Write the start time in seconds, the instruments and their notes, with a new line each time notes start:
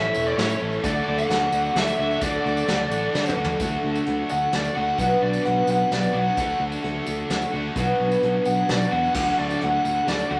Already playing: overdriven electric guitar A2 E3, twelve-string acoustic guitar A3 C#4 E4 A4, tonewheel organ A4 C#5 E5 C#6, lead electric guitar E5
0.14 fingered electric bass E1, overdriven electric guitar A3 C#4 E4, tambourine
0.26 lead electric guitar D5, tambourine
0.37 fingered electric bass A2, overdriven electric guitar E3, twelve-string acoustic guitar A3 C#4 E4, lead electric guitar C#5, snare, closed hi-hat
0.41 twelve-string acoustic guitar A4
0.49 tambourine
0.59 fingered electric bass A1, overdriven electric guitar A2 E3 A3 C#4 E4
0.72 tambourine
0.81 fingered electric bass D2, twelve-string acoustic guitar D3 F#3 A3 F#4 A4, overdriven electric guitar D4, tonewheel organ D5 F#5 D6, lead electric guitar D5, kick, closed hi-hat, tambourine
0.96 tambourine
1.06 fingered electric bass D2, overdriven electric guitar A3 D4 F#4
1.18 lead electric guitar F#5, tambourine
1.28 fingered electric bass D2, overdriven electric guitar D3 D4, twelve-string acoustic guitar F#3 A3 F#4 A4, snare, closed hi-hat
1.51 fingered electric bass D2, overdriven electric guitar A3 D4 F#4, tambourine
1.74 fingered electric bass D2, overdriven electric guitar D3 D4, twelve-string acoustic guitar F#3 A3 F#4 A4, lead electric guitar E5, snare, closed hi-hat
1.88 tambourine
1.98 fingered electric bass D2, overdriven electric guitar D3 A3 D4 F#4
2.11 tambourine
2.20 fingered electric bass D2, twelve-string acoustic guitar D3 F#3 A3 F#4 A4, overdriven electric guitar D4, lead electric guitar D5, kick, closed hi-hat, tambourine
2.45 fingered electric bass D2, overdriven electric guitar A3 D4 F#4, tambourine
2.57 tambourine
2.66 fingered electric bass D2, overdriven electric guitar D3 D4, twelve-string acoustic guitar F#3 A3 F#4 A4, snare, closed hi-hat
2.90 fingered electric bass A1, overdriven electric guitar D4 F#4, tambourine
2.94 overdriven electric guitar A3
3.13 overdriven electric guitar D3 D4, fingered electric bass D3, twelve-string acoustic guitar F#3 A3 F#4 A4, snare
3.26 mid tom, tambourine
3.37 fingered electric bass D2, overdriven electric guitar A3 D4 F#4
3.41 overdriven electric guitar D3, floor tom
3.50 tambourine
3.59 fingered electric bass D2, twelve-string acoustic guitar D3 F#3 A3 D4 F#4, tonewheel organ D4 F#4 A4 F#5, kick, closed hi-hat, tambourine
3.72 tambourine
3.84 fingered electric bass D2
3.95 tambourine
4.05 fingered electric bass D2, twelve-string acoustic guitar F#3 A3 D4 F#4, closed hi-hat
4.29 fingered electric bass D2, lead electric guitar F#5, tambourine
4.51 fingered electric bass D2, twelve-string acoustic guitar F#3 A3 D4 F#4, lead electric guitar D5, snare, closed hi-hat
4.64 tambourine
4.74 fingered electric bass D2, overdriven electric guitar D3, twelve-string acoustic guitar A3 D4 F#4, lead electric guitar F#5
4.98 fingered electric bass B1, twelve-string acoustic guitar B2 F#3 B3 D4 F#4, tonewheel organ B4, lead electric guitar F#5, kick, closed hi-hat, tambourine
5.22 fingered electric bass B1, lead electric guitar D5
5.33 tambourine
5.45 fingered electric bass B1, twelve-string acoustic guitar F#3 B3 D4 F#4, lead electric guitar F#5, closed hi-hat
5.67 fingered electric bass B1, lead electric guitar F#5, tambourine
5.91 fingered electric bass B1, twelve-string acoustic guitar F#3 B3 D4 F#4, lead electric guitar D5, snare, closed hi-hat
6.03 tambourine
6.13 fingered electric bass B1, overdriven electric guitar B2 F#3, twelve-string acoustic guitar B3 D4 F#4
6.18 lead electric guitar F#5
6.37 fingered electric bass D2, twelve-string acoustic guitar D3 F#3 A3 D4 F#4, tonewheel organ A4, lead electric guitar F#5, kick, closed hi-hat, tambourine
6.50 tambourine
6.60 fingered electric bass D2
6.72 tambourine
6.83 fingered electric bass D2, twelve-string acoustic guitar F#3 A3 D4 F#4, closed hi-hat
7.05 fingered electric bass D2, twelve-string acoustic guitar A3 D4 F#4, tambourine
7.30 fingered electric bass D2, twelve-string acoustic guitar F#3 A3 D4 F#4, snare, closed hi-hat
7.42 tambourine
7.53 fingered electric bass D2, overdriven electric guitar D3, twelve-string acoustic guitar A3 D4 F#4
7.75 fingered electric bass B1, twelve-string acoustic guitar B2 F#3 B3 D4, tonewheel organ F#4 B4, kick, closed hi-hat, tambourine
7.80 twelve-string acoustic guitar F#4
8.00 fingered electric bass B1
8.12 tambourine
8.22 fingered electric bass B1, twelve-string acoustic guitar F#3 B3 D4 F#4, closed hi-hat
8.45 fingered electric bass B1, lead electric guitar F#5, tambourine
8.58 tambourine
8.68 fingered electric bass B1, twelve-string acoustic guitar F#3 B3 D4 F#4, lead electric guitar D5, snare, closed hi-hat, tambourine
8.82 tambourine
8.91 fingered electric bass E2, overdriven electric guitar B2 F#3, twelve-string acoustic guitar B3 D4 F#4, lead electric guitar F#5
9.05 tambourine
9.14 fingered electric bass D2, twelve-string acoustic guitar D3 F#3 A3 D4 F#4, tonewheel organ A4, lead electric guitar F#5, kick, crash, tambourine
9.28 tambourine
9.39 fingered electric bass D2, lead electric guitar D5
9.50 tambourine
9.60 fingered electric bass D2, twelve-string acoustic guitar F#3 A3 D4 F#4, lead electric guitar F#5, closed hi-hat
9.85 fingered electric bass D2, lead electric guitar F#5, tambourine
10.07 fingered electric bass D2, twelve-string acoustic guitar F#3 A3 D4 F#4, lead electric guitar D5, snare, closed hi-hat
10.19 tambourine
10.30 fingered electric bass D2, overdriven electric guitar D3 F#3 A3 D4 F#4, lead electric guitar F#5